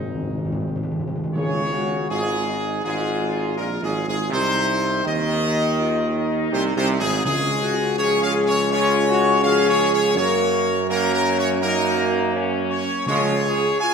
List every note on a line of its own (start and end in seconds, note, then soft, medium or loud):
0.00 0.98 G#1 medium
0.00 0.92 D#2 medium
0.00 0.99 G#3 medium
0.00 0.99 C4 medium
0.00 0.92 D#4 loud
0.07 0.13 G#2 medium
0.15 0.21 G#2 medium
0.23 0.29 G#2 medium
0.30 0.36 G#2 loud
0.37 0.44 G#2 medium
0.45 0.51 G#2 loud
0.52 0.59 G#2 loud
0.60 0.67 G#2 loud
0.68 0.75 G#2 loud
0.76 0.82 G#2 loud
0.83 0.90 G#2 loud
0.91 0.98 G#2 loud
0.99 1.06 G#2 loud
1.07 1.14 G#2 loud
1.16 1.22 G#2 loud
1.24 1.31 G#2 loud
1.34 2.06 C#2 loud
1.34 2.44 C#3 loud
1.34 2.07 C#3 loud
1.34 1.71 G#4 loud
1.34 2.05 C#5 loud
1.72 2.07 F#4 medium
2.10 2.81 G#1 loud
2.10 2.81 G#2 loud
2.10 2.45 F4 loud
2.10 2.80 G#4 loud
2.47 2.82 D#4 medium
2.84 3.59 G#1 loud
2.84 3.54 G#2 loud
2.84 4.28 F4 loud
2.84 3.54 G#4 loud
3.57 3.82 A#1 loud
3.57 3.68 A#2 loud
3.57 3.81 A#4 loud
3.82 4.06 G#1 loud
3.82 4.06 G#2 loud
3.82 4.06 G#4 loud
4.07 4.31 G#1 loud
4.07 4.19 G#2 medium
4.07 4.31 G#4 loud
4.30 5.02 C2 loud
4.30 5.01 C3 loud
4.30 5.02 D#4 loud
4.30 5.02 C5 loud
5.03 6.49 D#2 loud
5.03 6.47 D#3 loud
5.03 5.40 C4 loud
5.03 6.49 D#5 loud
5.42 5.76 D#4 loud
5.79 6.13 F4 loud
6.15 7.21 D#4 loud
6.52 6.75 C2 loud
6.52 6.75 C3 loud
6.52 6.63 C5 loud
6.76 6.99 C2 loud
6.76 7.00 C3 loud
6.76 6.88 C5 loud
7.00 7.24 G#1 loud
7.00 7.25 G#2 loud
7.00 7.23 G#4 loud
7.25 10.18 C#2 loud
7.25 8.31 C#3 loud
7.25 7.94 G#3 loud
7.25 7.94 C#4 loud
7.25 7.62 F4 loud
7.25 7.94 G#4 loud
7.60 7.95 F#4 loud
7.98 8.68 F3 loud
7.98 8.68 C#4 loud
7.98 8.55 G#4 loud
7.98 8.21 C#5 loud
8.22 8.33 F5 loud
8.47 8.69 C#5 loud
8.70 9.40 G#3 loud
8.70 9.40 C#4 loud
8.70 9.06 F4 loud
8.70 9.40 C#5 loud
9.07 9.41 F#4 loud
9.43 10.13 F3 loud
9.43 10.12 C#4 loud
9.43 10.17 G#4 loud
9.43 9.67 F5 loud
9.69 9.92 C#5 loud
9.93 10.15 C#5 loud
10.14 12.90 F#2 loud
10.14 10.72 F#3 loud
10.14 10.72 A#3 loud
10.14 10.90 A#4 loud
10.14 10.85 C#5 loud
10.89 11.58 F#3 loud
10.89 11.58 A#3 loud
10.89 11.58 C#4 loud
10.89 11.12 A#4 loud
11.14 11.36 A#4 loud
11.39 11.49 C#5 loud
11.61 13.03 F#3 loud
11.61 13.03 A#3 loud
11.61 12.30 D#4 loud
11.61 12.31 A#4 loud
12.34 13.03 C#4 loud
12.70 13.05 C#5 loud
13.06 13.68 C#2 loud
13.06 13.94 C#3 loud
13.06 13.34 F3 loud
13.06 13.33 G#3 loud
13.06 13.42 F4 loud
13.06 13.76 C#5 loud
13.45 13.78 G#4 loud
13.79 13.94 F4 loud
13.79 13.94 G#5 loud